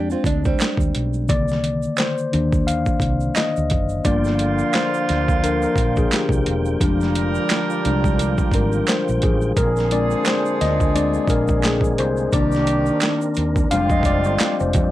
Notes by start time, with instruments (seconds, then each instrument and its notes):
Already playing: fretless electric bass F2, tine electric piano G#3 C4 D4, nylon-string guitar D4
0.10 nylon-string guitar C4 F4, shaker
0.24 fretless electric bass D2, nylon-string guitar G#3 D4, kick, closed hi-hat, shaker
0.45 nylon-string guitar G3 C4, kick, shaker
0.59 finger snap, snare, clap, closed hi-hat, shaker
0.77 fretless electric bass D#2, kick, shaker
0.95 fretless electric bass B1, closed hi-hat
1.13 shaker
1.28 fretless electric bass C2, tine electric piano D3 D#3 A#3 D5, kick, closed hi-hat, shaker
1.48 snare, shaker
1.64 closed hi-hat
1.83 shaker
1.97 tine electric piano C5, finger snap, snare, clap, closed hi-hat, shaker
2.18 shaker
2.32 fretless electric bass D#2, tine electric piano D#3 A#3 D4, closed hi-hat
2.52 kick, shaker
2.67 tine electric piano F5, closed hi-hat, shaker
2.86 kick, shaker
3.00 fretless electric bass C2, kick, closed hi-hat, shaker
3.21 shaker
3.35 tine electric piano D#5, finger snap, snare, clap, closed hi-hat, shaker
3.56 fretless electric bass D2, shaker
3.70 fretless electric bass F#1, kick, closed hi-hat
3.89 shaker
4.04 fretless electric bass G1, tonewheel organ D3 A#3 F4 G5, horn section D3 A#3 F4, tine electric piano F3 A#3 D4 D5, kick, closed hi-hat, shaker
4.24 snare, shaker
4.39 closed hi-hat
4.58 shaker
4.73 tine electric piano C5, finger snap, snare, clap, closed hi-hat, shaker
4.94 shaker
5.09 fretless electric bass D2, snare, closed hi-hat
5.28 kick, shaker
5.43 tine electric piano F3 A#3 D4 A#4, closed hi-hat, shaker
5.62 tine electric piano A#4, shaker
5.76 fretless electric bass A#1, kick, closed hi-hat, shaker
5.96 tine electric piano G#4, kick, shaker
6.11 tine electric piano G4, finger snap, snare, clap, closed hi-hat, shaker
6.29 fretless electric bass C2, kick, shaker
6.46 fretless electric bass E1, closed hi-hat
6.65 shaker
6.80 fretless electric bass F1, tonewheel organ F3, tine electric piano F3 G#3 D4, horn section G3 D4 A#4, kick, closed hi-hat, shaker
7.01 snare, shaker
7.15 closed hi-hat
7.35 shaker
7.49 finger snap, snare, clap, closed hi-hat, shaker
7.70 shaker
7.85 fretless electric bass C2, tine electric piano G3 G#3 D4, closed hi-hat
8.04 kick, shaker
8.19 closed hi-hat, shaker
8.38 kick, shaker
8.52 fretless electric bass G#1, tine electric piano A#4, kick, closed hi-hat, shaker
8.72 shaker
8.87 tine electric piano C5, finger snap, snare, clap, closed hi-hat, shaker
9.08 fretless electric bass A#1, shaker
9.22 fretless electric bass A1, tine electric piano G#4, kick, closed hi-hat
9.41 shaker
9.56 fretless electric bass A#1, tonewheel organ D3 A#3 C4 G#4, horn section F3 D4 G#4, tine electric piano A#4, kick, closed hi-hat, shaker
9.76 snare, shaker
9.91 tine electric piano G#3 C4 D4 D5, closed hi-hat
10.11 shaker
10.25 tine electric piano C5, finger snap, snare, clap, closed hi-hat, shaker
10.46 shaker
10.61 fretless electric bass D2, tine electric piano D#5, snare, closed hi-hat
10.80 kick, shaker
10.95 tine electric piano G#3 C4 D4 D5, closed hi-hat, shaker
11.14 shaker
11.28 fretless electric bass A#1, tine electric piano A#4, kick, closed hi-hat, shaker
11.48 kick, shaker
11.62 tine electric piano G#4, finger snap, snare, clap, closed hi-hat, shaker
11.81 kick, shaker
11.98 fretless electric bass C2, tine electric piano C5, closed hi-hat
12.17 shaker
12.32 fretless electric bass C2, tonewheel organ D#3 C4 D4 A#4, horn section D#3 D4 G4, tine electric piano D#3 A#3 D4 D5, kick, closed hi-hat, shaker
12.52 snare, shaker
12.67 closed hi-hat, shaker
12.86 shaker
13.00 finger snap, snare, clap, closed hi-hat, shaker
13.21 shaker
13.35 fretless electric bass D#2, closed hi-hat, shaker
13.56 kick, shaker
13.70 fretless electric bass F1, horn section D3 C4 F4, tonewheel organ F3 C4 G4, tine electric piano G3 G#3 D4 F5, closed hi-hat, shaker
13.90 fretless electric bass F2, tine electric piano D#5, kick, shaker
14.03 fretless electric bass F1, tine electric piano D5, kick, closed hi-hat, shaker
14.24 fretless electric bass G1, shaker
14.38 finger snap, snare, clap, closed hi-hat, shaker
14.60 fretless electric bass F1, tine electric piano C5, shaker
14.73 fretless electric bass F2, kick, closed hi-hat, shaker